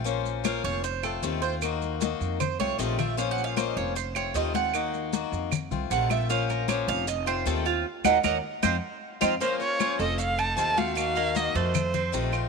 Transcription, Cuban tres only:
X:1
M:4/4
L:1/8
Q:1/4=154
K:Fphr
V:1 name="Cuban tres"
z2 B d c =A2 c | z4 c d e =e | (3f g f e d c d e g- | g4 z2 g =e |
f B d f e c =A F | z [Beg] [Beg] z [cef] z2 [cef] | [K:Bbm] B,2 D =A2 E2 G- | G B,2 =A,2 C E2 |]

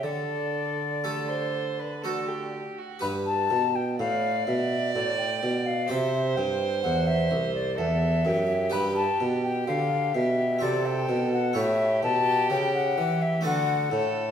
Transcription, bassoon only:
X:1
M:3/4
L:1/8
Q:1/4=63
K:G
V:1 name="Bassoon" clef=bass
D,4- D, z | G,, B,, A,, B,, A,, B,, | C, G,, E,, C,, E,, F,, | G,, B,, D, B,, C, B,, |
A,, B,, ^C, E, D, A,, |]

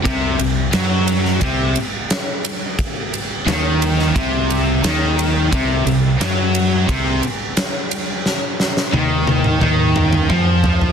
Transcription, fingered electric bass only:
X:1
M:4/4
L:1/8
Q:1/4=88
K:Cm
V:1 name="Fingered electric bass" clef=bass
C,, C,, ^F,,2 C,, z3 | z2 E,,2 C,,2 E,,2 | C,, C,, ^F,,2 C,, z3 | z2 E,,2 E,,2 F,,2 |]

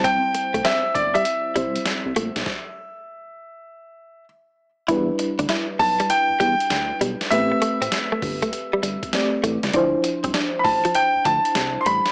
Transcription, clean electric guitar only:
X:1
M:4/4
L:1/16
Q:"Swing 16ths" 1/4=99
K:C
V:1 name="Clean electric guitar"
C z2 A, C z2 G, z2 G, z3 A, z | z16 | E z2 D E z2 G, z2 G, z3 G, z | z2 A, C z A, z A, z G, G, z3 A, G, |
D z2 C D z2 F, z2 F, z3 G, z |]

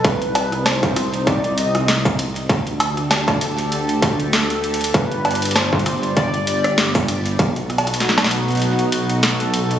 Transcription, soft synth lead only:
X:1
M:4/4
L:1/8
Q:"Swing 16ths" 1/4=98
K:Cm
V:1 name="Soft synth lead"
=B2 c2 d e2 z | z6 =A2 | =B2 c2 d d2 z | z6 =A2 |]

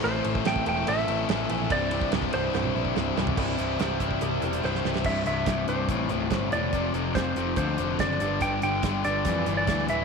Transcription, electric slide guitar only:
X:1
M:4/4
L:1/16
Q:1/4=143
K:C
V:1 name="Electric slide guitar"
c4 g2 g2 e8 | d4 z2 c4 z6 | z12 c4 | e2 e4 c8 d2- |
d2 z2 c4 c4 d4 | g2 g4 d4- d d3 e2 |]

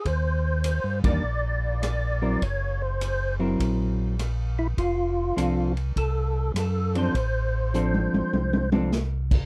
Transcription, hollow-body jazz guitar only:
X:1
M:4/4
L:1/8
Q:"Swing" 1/4=101
K:F
V:1 name="Hollow-body jazz guitar"
z3 [_E,G,B,D] z3 [_G,C=EB] | z3 [_G,C_FB]3 z2 | z2 [F,CDA] z4 [F,CDA] | z2 [F,CDA]3 [F,CDA] z2 |]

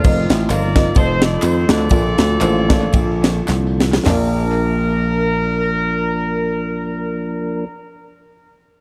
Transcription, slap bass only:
X:1
M:4/4
L:1/8
Q:"Swing" 1/4=100
K:Bb
V:1 name="Slap bass" clef=bass
F,,, A,,, G,,,2 F,,,2 F,, D,, | B,,, D,, A,,,2 B,,,2 C,,2 | B,,,8- | B,,,8 |]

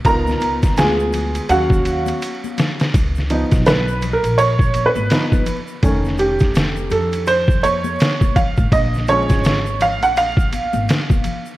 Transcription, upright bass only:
X:1
M:4/4
L:1/16
Q:"Swing 16ths" 1/4=83
K:C#mix
V:1 name="Upright bass" clef=bass
C,,2 C,, z =D,,4 ^D,,4 z4 | C,,3 B,,,4 A,,,4 G,,, z4 | =F,,,6 =F,,6 z3 =A,,, | A,,,3 G,,,4 A,,,4 G,,, z4 |]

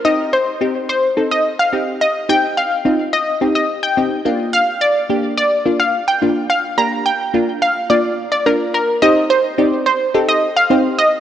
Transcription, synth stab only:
X:1
M:4/4
L:1/8
Q:1/4=107
K:Cdor
V:1 name="Synth stab"
[CEG] z [CEG] z [CEA] z [CEG] z | [CEG] z [CEF] z [CEG] z [CEG] [B,DF]- | [B,DF] z [B,DG] z [B,DF] z [B,DF] z | [B,DG] z [B,DF] z [B,DF] z [B,DF] z |
[CEGc] z [CEGd] z [CEGA] z [CEGc] z |]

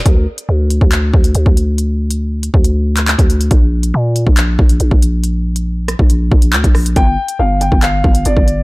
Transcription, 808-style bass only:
X:1
M:4/4
L:1/16
Q:1/4=139
K:Gdor
V:1 name="808-style bass" clef=bass
D,,2 z2 D,,3 D,,3 D,,2 D,, D,,3- | D,,6- D,, D,,6 D,,3 | B,,,4 B,,3 B,,,3 B,,,2 B,,, B,,,3- | B,,,6- B,,, B,,,3 B,,,2 D,, B,,,3 |
G,,,2 z2 G,,,3 G,,,3 G,,,2 G,,, G,,,3 |]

